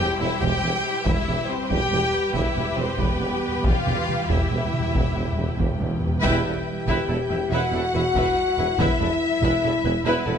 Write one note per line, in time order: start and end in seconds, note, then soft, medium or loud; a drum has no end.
0.00 1.05 G3 medium
0.00 1.06 E4 medium
0.00 0.19 G4 medium
0.00 0.20 G4 medium
0.00 1.02 C5 medium
0.00 0.19 G5 medium
0.00 1.05 G5 medium
0.19 0.29 E1 medium
0.19 0.27 E2 soft
0.19 0.28 C4 medium
0.19 0.42 E4 medium
0.19 0.41 E4 medium
0.19 0.28 G4 medium
0.19 0.41 E5 medium
0.40 0.50 E1 medium
0.40 0.51 E1 medium
0.40 0.49 E2 medium
0.40 1.04 G4 medium
0.40 1.05 G4 medium
0.40 1.06 G5 medium
0.40 taiko medium
0.62 0.71 E1 medium
0.62 0.72 E1 medium
0.62 0.70 E2 soft
0.83 0.91 C4 medium
0.83 0.91 G4 medium
1.05 1.14 E1 medium
1.05 1.13 E2 medium
1.05 6.20 G3 medium
1.05 1.48 E4 medium
1.05 1.49 E4 medium
1.05 6.24 G4 medium
1.05 6.22 B4 medium
1.05 1.48 E5 medium
1.05 6.20 G5 medium
1.05 taiko medium
1.21 1.28 E2 soft
1.26 1.36 E1 medium
1.26 1.34 E2 soft
1.26 1.35 E2 soft
1.36 1.42 E2 soft
1.43 1.50 E2 soft
1.48 1.57 E2 soft
1.48 1.56 B3 medium
1.48 1.71 C4 medium
1.48 1.56 G4 medium
1.48 1.70 C5 medium
1.58 1.64 E2 soft
1.66 1.73 E2 soft
1.70 1.79 E1 medium
1.70 1.78 E1 medium
1.70 1.78 E2 medium
1.70 2.35 G4 medium
1.70 2.34 G4 medium
1.70 2.33 G5 medium
1.70 taiko medium
1.81 1.87 E2 soft
1.89 2.00 E1 soft
1.89 1.95 E2 soft
1.89 2.00 E2 soft
1.93 2.01 E1 soft
1.93 2.02 E2 soft
2.03 2.10 E2 soft
2.11 2.17 E2 soft
2.11 2.21 B3 medium
2.11 2.21 G4 medium
2.18 2.25 E2 soft
2.26 2.32 E2 soft
2.33 2.43 E1 medium
2.33 2.40 E2 soft
2.33 2.42 E2 medium
2.33 2.77 E4 medium
2.33 2.77 E5 medium
2.33 taiko medium
2.41 2.47 E2 soft
2.48 2.55 E2 soft
2.56 2.65 E1 soft
2.56 2.64 E1 soft
2.56 2.64 E2 soft
2.56 2.62 E2 soft
2.63 2.70 E2 soft
2.71 2.77 E2 soft
2.77 2.86 E1 soft
2.77 2.85 E1 soft
2.77 2.85 E2 soft
2.77 2.85 B3 medium
2.77 2.98 C4 medium
2.77 2.99 C4 medium
2.77 2.85 G4 medium
2.77 2.99 C5 medium
2.86 2.92 E2 soft
2.93 2.99 E2 soft
2.98 3.07 E1 medium
2.98 3.06 E2 medium
2.98 3.07 E2 soft
2.98 3.64 B3 medium
2.98 3.66 B4 medium
2.98 taiko medium
3.08 3.15 E2 soft
3.16 3.29 E1 soft
3.16 3.23 E2 soft
3.20 3.28 E1 soft
3.20 3.28 E2 soft
3.20 3.30 E2 soft
3.32 3.40 E2 soft
3.41 3.47 E2 soft
3.41 3.51 B3 soft
3.41 3.51 G4 soft
3.48 3.55 E2 soft
3.56 3.64 E2 soft
3.64 3.73 E1 medium
3.64 3.72 E2 medium
3.64 3.72 E2 soft
3.64 4.29 F4 medium
3.64 4.31 F4 medium
3.64 4.30 F5 medium
3.64 taiko medium
3.73 3.79 E2 soft
3.80 3.86 E2 medium
3.86 3.95 E1 soft
3.86 3.94 E1 soft
3.86 3.94 E2 soft
3.86 3.94 E2 medium
3.86 taiko mid soft
3.96 4.01 E2 medium
4.02 4.10 E2 medium
4.08 4.18 E2 medium
4.08 4.16 B3 soft
4.08 4.16 G4 soft
4.08 taiko mid soft
4.19 4.24 E2 medium
4.25 4.38 E1 medium
4.25 4.31 E2 medium
4.30 4.38 E1 medium
4.30 4.38 E2 medium
4.30 4.39 E2 medium
4.30 5.60 E4 medium
4.30 5.60 E5 medium
4.30 taiko medium
4.40 4.47 E2 medium
4.48 4.59 E1 soft
4.48 4.60 E1 soft
4.48 4.55 E2 medium
4.48 4.59 E2 soft
4.56 4.64 E2 medium
4.65 4.71 E2 medium
4.72 4.78 E2 medium
4.72 4.81 B3 medium
4.72 4.81 G4 medium
4.72 taiko mid soft
4.80 4.86 E2 medium
4.87 4.93 E2 medium
4.94 5.02 E1 medium
4.94 5.03 E1 medium
4.94 5.02 E2 medium
4.94 5.01 E2 medium
4.94 taiko medium
5.02 5.08 E2 medium
5.09 5.17 E2 medium
5.16 5.24 E1 soft
5.16 5.25 E1 soft
5.16 5.24 E2 soft
5.16 5.23 E2 medium
5.25 5.31 E2 medium
5.32 5.39 E2 medium
5.37 5.46 E1 soft
5.37 5.45 E2 soft
5.37 5.47 E2 medium
5.37 5.46 B3 medium
5.37 5.45 G4 soft
5.48 5.55 E2 medium
5.56 5.68 E1 medium
5.56 5.67 E1 medium
5.56 5.61 E2 medium
5.56 5.67 E2 medium
5.56 taiko medium
5.63 5.69 E2 medium
5.70 5.77 E2 medium
5.79 5.89 E1 soft
5.79 5.90 E1 soft
5.79 5.84 E2 medium
5.79 5.89 E2 soft
5.85 5.93 E2 medium
5.94 5.99 E2 medium
6.01 6.07 E2 medium
6.01 6.10 B3 soft
6.01 6.11 G4 soft
6.08 6.13 E2 medium
6.15 6.22 E2 medium
6.22 6.44 E1 medium
6.22 6.44 E2 medium
6.22 10.38 G3 medium
6.22 10.38 E4 medium
6.22 6.44 E4 medium
6.22 7.47 G4 medium
6.22 10.38 B4 medium
6.22 6.44 B4 medium
6.22 6.43 E5 medium
6.22 10.38 E5 medium
6.22 7.47 G5 medium
6.22 taiko loud
6.45 6.53 E1 medium
6.45 6.54 E1 soft
6.45 6.53 E2 soft
6.45 6.53 E4 soft
6.45 6.53 A4 soft
6.45 6.53 D5 soft
6.87 6.95 E1 medium
6.87 6.97 E1 medium
6.87 6.96 E2 medium
6.87 7.08 E4 medium
6.87 7.08 B4 medium
6.87 7.07 E5 medium
6.87 taiko medium
7.08 7.16 E1 soft
7.08 7.18 E1 soft
7.08 7.17 E2 soft
7.08 7.17 E4 soft
7.08 7.17 A4 soft
7.08 7.17 D5 soft
7.30 7.38 E1 medium
7.30 7.40 E1 soft
7.30 7.38 E2 medium
7.30 7.39 E4 soft
7.30 7.38 B4 soft
7.30 7.39 E5 soft
7.50 7.59 E1 medium
7.50 7.60 E1 medium
7.50 7.58 E2 medium
7.50 7.72 E4 medium
7.50 8.78 F#4 loud
7.50 7.72 B4 medium
7.50 7.71 E5 medium
7.50 8.78 F#5 medium
7.72 7.81 E1 soft
7.72 7.82 E1 soft
7.72 7.80 E2 soft
7.72 7.82 E4 medium
7.72 7.82 A4 medium
7.72 7.81 D5 soft
7.94 8.03 E1 soft
7.94 8.02 E2 medium
7.94 8.03 E4 medium
7.94 8.03 B4 soft
7.94 8.03 E5 medium
8.15 8.23 E1 medium
8.15 8.24 E1 medium
8.15 8.24 E2 medium
8.15 8.36 E4 medium
8.15 8.36 B4 medium
8.15 8.36 E5 medium
8.15 taiko medium
8.58 8.66 E1 medium
8.58 8.66 E2 medium
8.58 8.67 E4 medium
8.58 8.67 B4 medium
8.58 8.66 E5 medium
8.79 8.87 E1 medium
8.79 8.87 E2 medium
8.79 10.06 E4 medium
8.79 8.99 E4 medium
8.79 8.99 B4 medium
8.79 10.05 E5 medium
8.79 8.99 E5 medium
8.79 taiko loud
9.00 9.08 E1 medium
9.00 9.09 E1 medium
9.00 9.08 E2 medium
9.00 9.09 E4 medium
9.00 9.09 A4 soft
9.00 9.09 D5 soft
9.42 9.50 E1 medium
9.42 9.51 E1 medium
9.42 9.50 E2 medium
9.42 9.62 E4 medium
9.42 9.62 B4 medium
9.42 9.62 E5 medium
9.42 taiko medium
9.63 9.72 E1 medium
9.63 9.72 E2 soft
9.63 9.71 E4 medium
9.63 9.72 A4 soft
9.63 9.72 D5 soft
9.84 9.92 E1 medium
9.84 9.93 E1 medium
9.84 9.93 E2 medium
9.84 9.93 E4 soft
9.84 9.92 B4 medium
9.84 9.93 E5 medium
10.05 10.13 E1 medium
10.05 10.14 E2 medium
10.05 10.38 B3 medium
10.05 10.25 E4 medium
10.05 10.25 B4 medium
10.05 10.38 B4 medium
10.05 10.25 E5 medium
10.26 10.34 E1 soft
10.26 10.34 E1 medium
10.26 10.35 E2 medium
10.26 10.34 E4 medium
10.26 10.34 A4 medium
10.26 10.34 D5 soft